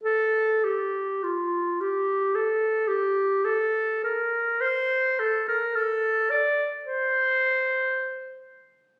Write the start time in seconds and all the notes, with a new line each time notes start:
0.04 A4
0.64 G4
1.24 F4
1.81 G4
2.35 A4
2.88 G4
3.45 A4
4.04 A#4
4.61 C5
5.20 A4
5.48 A#4
5.76 A4
6.31 D5
6.85 C5